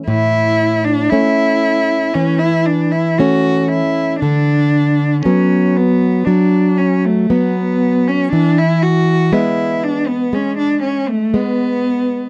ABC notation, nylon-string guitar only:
X:1
M:4/4
L:1/8
Q:1/4=58
K:A
V:1 name="Nylon-string guitar" clef=bass
A,,2 [A,C]2 E,2 [A,C]2 | D,2 [F,B,]2 F,2 [F,B,]2 | E,2 [G,B,]2 G,2 [G,B,]2 |]